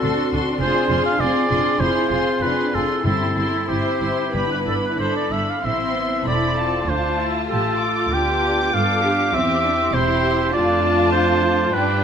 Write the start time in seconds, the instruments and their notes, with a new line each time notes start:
Already playing: french horn section C4 F#4, oboe A4
0.02 double bass section D2, cello section D4, viola section F#4, violin section A4 C6
0.32 double bass section D2, viola section F#4, violin section A4 C6
0.61 double bass section F1, french horn section C4 G#4, viola section F4, violin section G#4 C6, oboe C5
0.90 double bass section F1, viola section F4, violin section G#4 C6
1.06 oboe F5
1.20 double bass section F1, cello section C4, french horn section C4 G#4, viola section F4, violin section G#4 C6, oboe D5
1.50 double bass section F1, cello section D4, viola section F4, violin section G#4 C6
1.80 double bass section F1, french horn section C4 G#4, cello section E4, viola section F4, violin section G#4 C6, oboe C5
2.10 double bass section F1, cello section F4, viola section F4, violin section G#4 C6
2.42 double bass section F1, cello section D4, viola section F4, violin section G#4 C6, oboe B4
2.73 double bass section F1, viola section F4, violin section G#4 C6, oboe A4
3.04 double bass section G1, timpani G2, french horn section C4 E4, cello section E4, viola section E4, violin section G4 C6, oboe A4
3.36 double bass section G1, viola section E4, violin section G4 C6
3.69 double bass section G1, french horn section C4 E4, viola section E4, oboe G4, violin section C5 C6
4.01 double bass section G1, viola section E4, violin section C6
4.33 double bass section G1, timpani G2, french horn section B3 D4, viola section D4, violin section B4 B5
4.51 oboe B4
4.66 double bass section G1, viola section D4, oboe A4, violin section B5
4.85 oboe B4
4.98 double bass section G1, viola section D4, violin section A4 B5, oboe C5
5.16 oboe D5
5.31 double bass section G1, viola section D4, oboe E5, violin section B5
5.50 oboe F5
5.63 double bass section A1, viola section C4, french horn section C4 E4, cello section C4, violin section E4 C6, oboe E5
5.95 viola section B3
6.26 double bass section E1, viola section C4, cello section E4, violin section A4 B5, oboe D5
6.57 cello section F4, violin section A5
6.88 double bass section D2, french horn section A3 F4, viola section D4, violin section F4 A5, oboe C5
7.19 viola section E4
7.49 double bass section A1, viola section F4, cello section G4, oboe A4, violin section A5
7.80 cello section F4, violin section D6
8.13 double bass section D2, french horn section B3, violin section D4, cello section G4, oboe G5
8.73 double bass section G2, viola section D4, violin section F4, cello section A4, oboe F5
9.03 violin section F4, cello section G4
9.34 double bass section E2, viola section C4, cello section C4, french horn section C4 E4, violin section G4, oboe E5
9.64 cello section D4
9.94 double bass section E1, cello section E4, viola section E4, violin section G4 C6, oboe C5
10.24 cello section G4
10.53 double bass section F2, french horn section A3 F4, viola section D4, violin section F4 A5, cello section F4, oboe D5
10.83 cello section F4
11.12 oboe C5
11.73 double bass section G2, french horn section G3 F4, viola section D4, cello section D4, violin section F4 G5, oboe B4